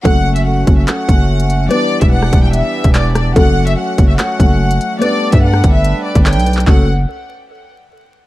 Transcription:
0.03 F#1 F#3 A3 C#4 F#4 A4 F#5, kick, closed hi-hat
0.08 A4
0.36 E5, closed hi-hat
0.47 F#5
0.67 F#1, kick, closed hi-hat
0.77 E5
0.88 F#5, clap, closed hi-hat
1.09 F#1, kick, closed hi-hat
1.40 closed hi-hat
1.50 closed hi-hat
1.68 E3 G3 B3 D4 E4 G4 B4 D5, closed hi-hat
1.73 G4
2.01 E1 E5, kick, closed hi-hat
2.12 F#5
2.22 cross-stick
2.33 E1, kick, closed hi-hat
2.43 G5
2.53 E5, closed hi-hat
2.84 E1, kick, closed hi-hat
2.94 D5, clap, closed hi-hat
3.15 D5, cross-stick, closed hi-hat
3.34 F#1 F#3 A3 C#4 F#4 A4 F#5, kick, closed hi-hat
3.39 A4
3.67 E5, closed hi-hat
3.77 F#5
3.98 F#1, kick, closed hi-hat
4.08 E5
4.18 F#5, clap, closed hi-hat
4.38 F#1 F#3 A3 C#4 F#4 A4, kick, closed hi-hat
4.71 closed hi-hat
4.81 closed hi-hat
4.99 G3 A3 B3 D4 G4 A4 B4 D5, closed hi-hat
5.04 A4
5.32 G2 E5, kick, closed hi-hat
5.43 F#5
5.53 cross-stick
5.64 G1, kick, closed hi-hat
5.74 E5
5.84 closed hi-hat
6.05 D5
6.15 G1, kick, closed hi-hat
6.26 C#5 G5, clap, closed hi-hat
6.33 B1, closed hi-hat
6.40 closed hi-hat
6.46 B4, closed hi-hat, open hi-hat
6.53 clap, closed hi-hat
6.60 closed hi-hat
6.67 F#1 F#3 A3 C#4 F#4 A4 C#5 F#5, kick, clap, floor tom

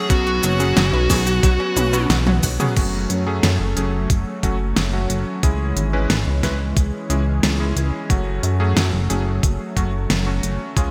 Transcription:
Already playing: F#3 C#4
0.10 B1 F#3 B3 C#4 F#4, kick, closed hi-hat, cabasa
0.27 F#4
0.43 F#1 F#3, closed hi-hat, cabasa
0.60 F#3 B3 C#4 G#4, cabasa
0.76 F#1 F#3, snare, closed hi-hat, cabasa
0.93 B1 B4
1.10 B1 F#3 B3 C#4 G#4, kick, snare, open hi-hat, cabasa
1.27 F#4, cabasa
1.43 B1 F#3, kick, closed hi-hat, cabasa
1.60 C#4
1.76 B1 B4, closed hi-hat, high tom, cabasa
1.93 F#3 B3 C#4 F#4, cabasa
2.10 B1 F#4, snare, closed hi-hat, mid tom, cabasa
2.26 F#3, mid tom
2.43 B1 F#5, kick, open hi-hat, cabasa
2.60 F#3 B3 C#4 G#4, mid tom, cabasa
2.77 F#1 F#3 A3 C#4 F#4, kick, closed hi-hat, crash
3.10 F#2, closed hi-hat
3.27 F#3 A3 C#4 G#4
3.43 F#2, snare, closed hi-hat
3.60 F#1
3.77 F#1 F#3 A3 C#4 G#4, closed hi-hat
4.10 F#1, kick, closed hi-hat
4.43 F#1 F#3 A3 C#4 F#4, kick, closed hi-hat
4.76 F#1, snare, closed hi-hat
4.93 F#3 A3 C#4 F#4
5.10 F#1, closed hi-hat
5.43 C#2 E3 G#3 C#4 E4 G#4, kick, closed hi-hat
5.76 G#1, closed hi-hat
5.93 G#3 C#4 E4 B4
6.10 G#1, snare, closed hi-hat
6.27 C#2
6.43 C#2 G#3 C#4 E4 B4, kick, snare, closed hi-hat
6.77 C#2, kick, closed hi-hat
7.10 C#2 G#3 C#4 E4 G#4, closed hi-hat
7.43 C#2, snare, closed hi-hat
7.60 G#3 C#4 E4 G#4
7.76 C#2, closed hi-hat
8.10 F#1 F#3 A3 C#4 F#4, kick, closed hi-hat
8.43 F#2, closed hi-hat
8.60 F#3 A3 C#4 G#4
8.76 F#2, snare, closed hi-hat
8.93 F#1
9.10 F#1 F#3 A3 C#4 G#4, closed hi-hat
9.43 F#1, kick, closed hi-hat
9.76 F#1 F#3 A3 C#4 F#4, kick, closed hi-hat
10.10 F#1, snare, closed hi-hat
10.26 F#3 A3 C#4 F#4
10.43 F#1, closed hi-hat
10.77 C#2 F3 G#3 C#4 F4 G#4, kick, closed hi-hat

